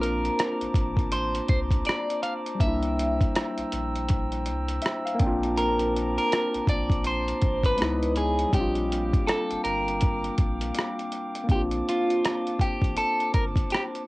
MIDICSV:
0, 0, Header, 1, 6, 480
1, 0, Start_track
1, 0, Key_signature, -2, "major"
1, 0, Tempo, 740741
1, 1686, Time_signature, 4, 2, 24, 8
1, 9118, End_track
2, 0, Start_track
2, 0, Title_t, "Glass harmonica"
2, 0, Program_c, 0, 92
2, 0, Note_on_c, 0, 72, 67
2, 0, Note_on_c, 0, 81, 63
2, 0, Note_on_c, 0, 82, 66
2, 0, Note_on_c, 0, 86, 65
2, 1660, Note_off_c, 0, 86, 0
2, 1666, Note_off_c, 0, 81, 0
2, 1687, Note_on_c, 0, 79, 58
2, 1687, Note_on_c, 0, 88, 79
2, 3342, Note_off_c, 0, 82, 0
2, 3350, Note_off_c, 0, 79, 0
2, 3350, Note_off_c, 0, 88, 0
2, 3365, Note_on_c, 0, 86, 75
2, 3367, Note_on_c, 0, 81, 66
2, 3368, Note_on_c, 0, 82, 63
2, 5020, Note_off_c, 0, 72, 0
2, 5029, Note_off_c, 0, 86, 0
2, 5030, Note_off_c, 0, 81, 0
2, 5030, Note_off_c, 0, 82, 0
2, 5045, Note_on_c, 0, 75, 67
2, 5049, Note_on_c, 0, 87, 72
2, 5050, Note_on_c, 0, 73, 72
2, 5050, Note_on_c, 0, 83, 62
2, 5521, Note_off_c, 0, 75, 0
2, 5523, Note_off_c, 0, 83, 0
2, 5523, Note_off_c, 0, 87, 0
2, 5524, Note_off_c, 0, 73, 0
2, 5524, Note_on_c, 0, 58, 74
2, 5527, Note_on_c, 0, 77, 61
2, 5529, Note_on_c, 0, 79, 67
2, 5530, Note_on_c, 0, 86, 79
2, 7426, Note_off_c, 0, 58, 0
2, 7427, Note_off_c, 0, 77, 0
2, 7429, Note_off_c, 0, 79, 0
2, 7429, Note_off_c, 0, 86, 0
2, 7450, Note_on_c, 0, 72, 65
2, 7450, Note_on_c, 0, 86, 76
2, 7451, Note_on_c, 0, 81, 62
2, 9118, Note_off_c, 0, 72, 0
2, 9118, Note_off_c, 0, 81, 0
2, 9118, Note_off_c, 0, 86, 0
2, 9118, End_track
3, 0, Start_track
3, 0, Title_t, "Clean electric guitar"
3, 0, Program_c, 1, 27
3, 8, Note_on_c, 1, 70, 81
3, 725, Note_off_c, 1, 70, 0
3, 728, Note_on_c, 1, 72, 102
3, 959, Note_off_c, 1, 72, 0
3, 967, Note_on_c, 1, 72, 72
3, 1031, Note_off_c, 1, 72, 0
3, 1209, Note_on_c, 1, 74, 91
3, 1442, Note_off_c, 1, 74, 0
3, 1444, Note_on_c, 1, 77, 109
3, 1509, Note_off_c, 1, 77, 0
3, 1688, Note_on_c, 1, 76, 95
3, 3341, Note_off_c, 1, 76, 0
3, 3612, Note_on_c, 1, 70, 97
3, 3995, Note_off_c, 1, 70, 0
3, 4003, Note_on_c, 1, 70, 100
3, 4334, Note_off_c, 1, 70, 0
3, 4337, Note_on_c, 1, 74, 96
3, 4577, Note_off_c, 1, 74, 0
3, 4579, Note_on_c, 1, 72, 104
3, 4959, Note_off_c, 1, 72, 0
3, 4962, Note_on_c, 1, 71, 103
3, 5268, Note_off_c, 1, 71, 0
3, 5298, Note_on_c, 1, 68, 83
3, 5516, Note_off_c, 1, 68, 0
3, 5536, Note_on_c, 1, 67, 90
3, 6006, Note_off_c, 1, 67, 0
3, 6009, Note_on_c, 1, 69, 75
3, 6231, Note_off_c, 1, 69, 0
3, 6246, Note_on_c, 1, 70, 78
3, 6700, Note_off_c, 1, 70, 0
3, 7461, Note_on_c, 1, 67, 91
3, 7524, Note_off_c, 1, 67, 0
3, 7705, Note_on_c, 1, 65, 95
3, 8171, Note_on_c, 1, 67, 80
3, 8190, Note_off_c, 1, 65, 0
3, 8406, Note_off_c, 1, 67, 0
3, 8408, Note_on_c, 1, 69, 109
3, 8631, Note_off_c, 1, 69, 0
3, 8645, Note_on_c, 1, 70, 94
3, 8710, Note_off_c, 1, 70, 0
3, 8892, Note_on_c, 1, 67, 92
3, 8956, Note_off_c, 1, 67, 0
3, 9118, End_track
4, 0, Start_track
4, 0, Title_t, "Tine electric piano"
4, 0, Program_c, 2, 4
4, 0, Control_c, 2, 64, 127
4, 0, Note_on_c, 2, 58, 67
4, 0, Note_on_c, 2, 60, 62
4, 0, Note_on_c, 2, 62, 55
4, 0, Note_on_c, 2, 65, 76
4, 1640, Note_off_c, 2, 58, 0
4, 1651, Note_on_c, 2, 55, 62
4, 1653, Note_off_c, 2, 60, 0
4, 1666, Note_off_c, 2, 62, 0
4, 1678, Note_off_c, 2, 65, 0
4, 1678, Note_on_c, 2, 58, 61
4, 1695, Control_c, 2, 64, 0
4, 1702, Note_on_c, 2, 62, 58
4, 1730, Note_on_c, 2, 64, 73
4, 1823, Control_c, 2, 64, 127
4, 3126, Note_on_c, 2, 76, 71
4, 3263, Note_off_c, 2, 76, 0
4, 3274, Note_on_c, 2, 77, 74
4, 3323, Note_off_c, 2, 55, 0
4, 3327, Note_off_c, 2, 58, 0
4, 3334, Note_on_c, 2, 58, 89
4, 3348, Note_off_c, 2, 62, 0
4, 3359, Note_on_c, 2, 60, 81
4, 3360, Note_off_c, 2, 77, 0
4, 3362, Note_off_c, 2, 64, 0
4, 3374, Note_on_c, 2, 79, 75
4, 3375, Control_c, 2, 64, 0
4, 3385, Note_on_c, 2, 62, 76
4, 3412, Note_on_c, 2, 65, 87
4, 3500, Control_c, 2, 64, 127
4, 3594, Note_off_c, 2, 79, 0
4, 5004, Note_off_c, 2, 58, 0
4, 5017, Note_off_c, 2, 60, 0
4, 5030, Note_off_c, 2, 62, 0
4, 5033, Note_on_c, 2, 56, 64
4, 5043, Note_off_c, 2, 65, 0
4, 5044, Note_on_c, 2, 59, 60
4, 5054, Control_c, 2, 64, 0
4, 5057, Note_on_c, 2, 63, 54
4, 5069, Note_on_c, 2, 64, 70
4, 5183, Control_c, 2, 64, 127
4, 5501, Note_on_c, 2, 55, 67
4, 5520, Note_off_c, 2, 56, 0
4, 5525, Note_off_c, 2, 59, 0
4, 5527, Note_on_c, 2, 60, 64
4, 5532, Note_off_c, 2, 63, 0
4, 5533, Control_c, 2, 64, 0
4, 5538, Note_off_c, 2, 64, 0
4, 5552, Note_on_c, 2, 62, 59
4, 5577, Note_on_c, 2, 65, 77
4, 5631, Control_c, 2, 64, 127
4, 7408, Note_off_c, 2, 55, 0
4, 7411, Note_on_c, 2, 58, 70
4, 7421, Note_off_c, 2, 60, 0
4, 7433, Note_off_c, 2, 62, 0
4, 7433, Note_on_c, 2, 60, 64
4, 7446, Note_off_c, 2, 65, 0
4, 7455, Control_c, 2, 64, 0
4, 7459, Note_on_c, 2, 62, 59
4, 7484, Note_on_c, 2, 65, 67
4, 7564, Control_c, 2, 64, 127
4, 9118, Note_off_c, 2, 58, 0
4, 9118, Note_off_c, 2, 60, 0
4, 9118, Note_off_c, 2, 62, 0
4, 9118, Note_off_c, 2, 65, 0
4, 9118, End_track
5, 0, Start_track
5, 0, Title_t, "Sub bass"
5, 0, Program_c, 3, 38
5, 0, Note_on_c, 3, 34, 110
5, 190, Note_off_c, 3, 34, 0
5, 399, Note_on_c, 3, 33, 46
5, 435, Note_off_c, 3, 33, 0
5, 486, Note_on_c, 3, 33, 89
5, 908, Note_off_c, 3, 33, 0
5, 969, Note_on_c, 3, 36, 79
5, 1179, Note_off_c, 3, 36, 0
5, 1689, Note_on_c, 3, 36, 100
5, 2110, Note_off_c, 3, 36, 0
5, 2320, Note_on_c, 3, 34, 51
5, 2356, Note_off_c, 3, 34, 0
5, 2416, Note_on_c, 3, 34, 85
5, 2896, Note_on_c, 3, 36, 81
5, 2906, Note_off_c, 3, 34, 0
5, 3103, Note_off_c, 3, 36, 0
5, 3370, Note_on_c, 3, 34, 106
5, 4002, Note_off_c, 3, 34, 0
5, 4242, Note_on_c, 3, 34, 50
5, 4277, Note_off_c, 3, 34, 0
5, 4327, Note_on_c, 3, 34, 89
5, 4749, Note_off_c, 3, 34, 0
5, 4813, Note_on_c, 3, 33, 90
5, 5021, Note_off_c, 3, 33, 0
5, 5061, Note_on_c, 3, 37, 97
5, 5477, Note_off_c, 3, 37, 0
5, 5530, Note_on_c, 3, 34, 119
5, 5951, Note_off_c, 3, 34, 0
5, 6165, Note_on_c, 3, 31, 46
5, 6199, Note_off_c, 3, 31, 0
5, 6253, Note_on_c, 3, 31, 92
5, 6672, Note_off_c, 3, 31, 0
5, 6730, Note_on_c, 3, 34, 96
5, 6939, Note_off_c, 3, 34, 0
5, 7445, Note_on_c, 3, 34, 112
5, 7657, Note_off_c, 3, 34, 0
5, 8308, Note_on_c, 3, 33, 90
5, 8392, Note_off_c, 3, 33, 0
5, 8649, Note_on_c, 3, 31, 83
5, 8859, Note_off_c, 3, 31, 0
5, 9118, End_track
6, 0, Start_track
6, 0, Title_t, "Drums"
6, 20, Note_on_c, 9, 42, 66
6, 85, Note_off_c, 9, 42, 0
6, 161, Note_on_c, 9, 42, 41
6, 226, Note_off_c, 9, 42, 0
6, 252, Note_on_c, 9, 42, 86
6, 258, Note_on_c, 9, 37, 99
6, 317, Note_off_c, 9, 42, 0
6, 323, Note_off_c, 9, 37, 0
6, 397, Note_on_c, 9, 42, 53
6, 462, Note_off_c, 9, 42, 0
6, 481, Note_on_c, 9, 36, 99
6, 488, Note_on_c, 9, 42, 69
6, 546, Note_off_c, 9, 36, 0
6, 553, Note_off_c, 9, 42, 0
6, 626, Note_on_c, 9, 36, 89
6, 640, Note_on_c, 9, 42, 40
6, 691, Note_off_c, 9, 36, 0
6, 705, Note_off_c, 9, 42, 0
6, 723, Note_on_c, 9, 42, 81
6, 788, Note_off_c, 9, 42, 0
6, 873, Note_on_c, 9, 42, 48
6, 938, Note_off_c, 9, 42, 0
6, 962, Note_on_c, 9, 42, 65
6, 966, Note_on_c, 9, 36, 102
6, 1027, Note_off_c, 9, 42, 0
6, 1031, Note_off_c, 9, 36, 0
6, 1105, Note_on_c, 9, 36, 77
6, 1110, Note_on_c, 9, 42, 53
6, 1170, Note_off_c, 9, 36, 0
6, 1175, Note_off_c, 9, 42, 0
6, 1199, Note_on_c, 9, 42, 68
6, 1225, Note_on_c, 9, 37, 111
6, 1264, Note_off_c, 9, 42, 0
6, 1290, Note_off_c, 9, 37, 0
6, 1361, Note_on_c, 9, 42, 48
6, 1426, Note_off_c, 9, 42, 0
6, 1445, Note_on_c, 9, 42, 57
6, 1510, Note_off_c, 9, 42, 0
6, 1596, Note_on_c, 9, 42, 43
6, 1661, Note_off_c, 9, 42, 0
6, 1686, Note_on_c, 9, 36, 110
6, 1688, Note_on_c, 9, 42, 75
6, 1751, Note_off_c, 9, 36, 0
6, 1753, Note_off_c, 9, 42, 0
6, 1832, Note_on_c, 9, 42, 45
6, 1896, Note_off_c, 9, 42, 0
6, 1940, Note_on_c, 9, 42, 69
6, 2005, Note_off_c, 9, 42, 0
6, 2078, Note_on_c, 9, 36, 97
6, 2082, Note_on_c, 9, 42, 44
6, 2143, Note_off_c, 9, 36, 0
6, 2147, Note_off_c, 9, 42, 0
6, 2174, Note_on_c, 9, 42, 95
6, 2180, Note_on_c, 9, 37, 110
6, 2239, Note_off_c, 9, 42, 0
6, 2245, Note_off_c, 9, 37, 0
6, 2318, Note_on_c, 9, 42, 47
6, 2383, Note_off_c, 9, 42, 0
6, 2412, Note_on_c, 9, 42, 70
6, 2477, Note_off_c, 9, 42, 0
6, 2563, Note_on_c, 9, 42, 39
6, 2628, Note_off_c, 9, 42, 0
6, 2647, Note_on_c, 9, 42, 74
6, 2657, Note_on_c, 9, 36, 92
6, 2712, Note_off_c, 9, 42, 0
6, 2722, Note_off_c, 9, 36, 0
6, 2798, Note_on_c, 9, 42, 48
6, 2863, Note_off_c, 9, 42, 0
6, 2888, Note_on_c, 9, 42, 62
6, 2953, Note_off_c, 9, 42, 0
6, 3035, Note_on_c, 9, 42, 53
6, 3100, Note_off_c, 9, 42, 0
6, 3121, Note_on_c, 9, 42, 71
6, 3148, Note_on_c, 9, 37, 119
6, 3186, Note_off_c, 9, 42, 0
6, 3213, Note_off_c, 9, 37, 0
6, 3284, Note_on_c, 9, 42, 46
6, 3349, Note_off_c, 9, 42, 0
6, 3366, Note_on_c, 9, 42, 64
6, 3368, Note_on_c, 9, 36, 106
6, 3431, Note_off_c, 9, 42, 0
6, 3433, Note_off_c, 9, 36, 0
6, 3521, Note_on_c, 9, 42, 42
6, 3585, Note_off_c, 9, 42, 0
6, 3612, Note_on_c, 9, 42, 79
6, 3677, Note_off_c, 9, 42, 0
6, 3754, Note_on_c, 9, 42, 49
6, 3819, Note_off_c, 9, 42, 0
6, 3865, Note_on_c, 9, 42, 66
6, 3930, Note_off_c, 9, 42, 0
6, 4006, Note_on_c, 9, 42, 45
6, 4071, Note_off_c, 9, 42, 0
6, 4096, Note_on_c, 9, 42, 88
6, 4102, Note_on_c, 9, 37, 107
6, 4161, Note_off_c, 9, 42, 0
6, 4167, Note_off_c, 9, 37, 0
6, 4240, Note_on_c, 9, 42, 52
6, 4305, Note_off_c, 9, 42, 0
6, 4324, Note_on_c, 9, 36, 107
6, 4332, Note_on_c, 9, 42, 71
6, 4389, Note_off_c, 9, 36, 0
6, 4397, Note_off_c, 9, 42, 0
6, 4469, Note_on_c, 9, 36, 99
6, 4482, Note_on_c, 9, 42, 40
6, 4534, Note_off_c, 9, 36, 0
6, 4547, Note_off_c, 9, 42, 0
6, 4565, Note_on_c, 9, 42, 69
6, 4630, Note_off_c, 9, 42, 0
6, 4718, Note_on_c, 9, 42, 48
6, 4783, Note_off_c, 9, 42, 0
6, 4806, Note_on_c, 9, 42, 65
6, 4810, Note_on_c, 9, 36, 99
6, 4871, Note_off_c, 9, 42, 0
6, 4875, Note_off_c, 9, 36, 0
6, 4948, Note_on_c, 9, 36, 77
6, 4954, Note_on_c, 9, 42, 54
6, 5013, Note_off_c, 9, 36, 0
6, 5019, Note_off_c, 9, 42, 0
6, 5041, Note_on_c, 9, 42, 69
6, 5067, Note_on_c, 9, 37, 112
6, 5106, Note_off_c, 9, 42, 0
6, 5132, Note_off_c, 9, 37, 0
6, 5202, Note_on_c, 9, 42, 44
6, 5267, Note_off_c, 9, 42, 0
6, 5287, Note_on_c, 9, 42, 56
6, 5352, Note_off_c, 9, 42, 0
6, 5437, Note_on_c, 9, 42, 41
6, 5502, Note_off_c, 9, 42, 0
6, 5527, Note_on_c, 9, 36, 99
6, 5531, Note_on_c, 9, 42, 77
6, 5592, Note_off_c, 9, 36, 0
6, 5595, Note_off_c, 9, 42, 0
6, 5673, Note_on_c, 9, 42, 47
6, 5738, Note_off_c, 9, 42, 0
6, 5782, Note_on_c, 9, 42, 64
6, 5846, Note_off_c, 9, 42, 0
6, 5919, Note_on_c, 9, 36, 100
6, 5922, Note_on_c, 9, 42, 47
6, 5984, Note_off_c, 9, 36, 0
6, 5987, Note_off_c, 9, 42, 0
6, 6017, Note_on_c, 9, 42, 93
6, 6023, Note_on_c, 9, 37, 110
6, 6082, Note_off_c, 9, 42, 0
6, 6087, Note_off_c, 9, 37, 0
6, 6160, Note_on_c, 9, 42, 46
6, 6225, Note_off_c, 9, 42, 0
6, 6252, Note_on_c, 9, 42, 73
6, 6316, Note_off_c, 9, 42, 0
6, 6402, Note_on_c, 9, 42, 41
6, 6467, Note_off_c, 9, 42, 0
6, 6484, Note_on_c, 9, 42, 74
6, 6496, Note_on_c, 9, 36, 96
6, 6549, Note_off_c, 9, 42, 0
6, 6561, Note_off_c, 9, 36, 0
6, 6637, Note_on_c, 9, 42, 46
6, 6702, Note_off_c, 9, 42, 0
6, 6725, Note_on_c, 9, 42, 67
6, 6728, Note_on_c, 9, 36, 107
6, 6790, Note_off_c, 9, 42, 0
6, 6793, Note_off_c, 9, 36, 0
6, 6875, Note_on_c, 9, 42, 59
6, 6940, Note_off_c, 9, 42, 0
6, 6963, Note_on_c, 9, 42, 73
6, 6989, Note_on_c, 9, 37, 103
6, 7028, Note_off_c, 9, 42, 0
6, 7054, Note_off_c, 9, 37, 0
6, 7123, Note_on_c, 9, 42, 41
6, 7188, Note_off_c, 9, 42, 0
6, 7205, Note_on_c, 9, 42, 61
6, 7270, Note_off_c, 9, 42, 0
6, 7355, Note_on_c, 9, 42, 46
6, 7420, Note_off_c, 9, 42, 0
6, 7444, Note_on_c, 9, 36, 101
6, 7448, Note_on_c, 9, 42, 68
6, 7508, Note_off_c, 9, 36, 0
6, 7513, Note_off_c, 9, 42, 0
6, 7590, Note_on_c, 9, 42, 43
6, 7654, Note_off_c, 9, 42, 0
6, 7702, Note_on_c, 9, 42, 65
6, 7767, Note_off_c, 9, 42, 0
6, 7842, Note_on_c, 9, 42, 40
6, 7907, Note_off_c, 9, 42, 0
6, 7935, Note_on_c, 9, 42, 84
6, 7941, Note_on_c, 9, 37, 108
6, 8000, Note_off_c, 9, 42, 0
6, 8006, Note_off_c, 9, 37, 0
6, 8079, Note_on_c, 9, 42, 50
6, 8144, Note_off_c, 9, 42, 0
6, 8160, Note_on_c, 9, 36, 87
6, 8172, Note_on_c, 9, 42, 71
6, 8225, Note_off_c, 9, 36, 0
6, 8237, Note_off_c, 9, 42, 0
6, 8305, Note_on_c, 9, 36, 85
6, 8321, Note_on_c, 9, 42, 38
6, 8370, Note_off_c, 9, 36, 0
6, 8386, Note_off_c, 9, 42, 0
6, 8402, Note_on_c, 9, 42, 70
6, 8467, Note_off_c, 9, 42, 0
6, 8555, Note_on_c, 9, 42, 43
6, 8620, Note_off_c, 9, 42, 0
6, 8644, Note_on_c, 9, 42, 62
6, 8646, Note_on_c, 9, 36, 100
6, 8708, Note_off_c, 9, 42, 0
6, 8711, Note_off_c, 9, 36, 0
6, 8785, Note_on_c, 9, 36, 85
6, 8792, Note_on_c, 9, 42, 52
6, 8850, Note_off_c, 9, 36, 0
6, 8857, Note_off_c, 9, 42, 0
6, 8880, Note_on_c, 9, 42, 70
6, 8907, Note_on_c, 9, 37, 109
6, 8945, Note_off_c, 9, 42, 0
6, 8971, Note_off_c, 9, 37, 0
6, 9040, Note_on_c, 9, 42, 41
6, 9105, Note_off_c, 9, 42, 0
6, 9118, End_track
0, 0, End_of_file